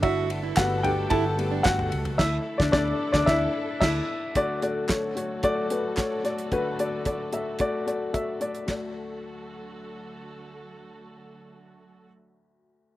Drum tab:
CC |----------------|x-----------x---|----------------|----------------|
RD |x-x-x-x-x-x-x-xx|----------------|----------------|----------------|
HH |----------------|----------------|x-x-x-x-x-x-x-xx|x-x-x-x-x-x-x-xx|
CP |----x-------x---|----------------|----x-------x---|----------------|
SD |----o-------o---|o--oo--oo---o---|----o-------o-o-|----------------|
FT |------o------o-o|----------------|----------------|----------------|
BD |o---o---o---o---|o--oo--oo---o---|o---o---o---o---|o---o---o---o---|

CC |----------------|----------------|
RD |b---------------|----------------|
HH |----------------|----------------|
CP |----------------|----------------|
SD |o---------------|----------------|
FT |----------------|----------------|
BD |o---------------|----------------|